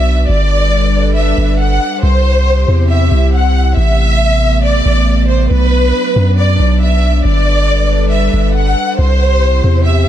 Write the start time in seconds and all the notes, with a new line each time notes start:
Already playing: B1 B3 D4 F#4 E5
0.29 G1 G3 D4 A4 B4 D5
1.16 E5
1.38 G1
1.60 F#5
2.03 C2 C3 C4 E4 G4 C5
2.68 E2
2.90 E5
3.12 C2
3.34 F#5
3.77 A1 A3 B3 E5
4.64 D5
4.86 A1
5.29 C5
5.51 B1 F#3 D4 B4
6.16 F#2
6.39 D5
6.60 B1
6.81 E5
7.25 G1 G3 A4 B4 D5
8.12 E5
8.34 G1
8.55 F#5
8.99 C2 C3 C4 E4 G4 C5
9.64 E2
9.86 E5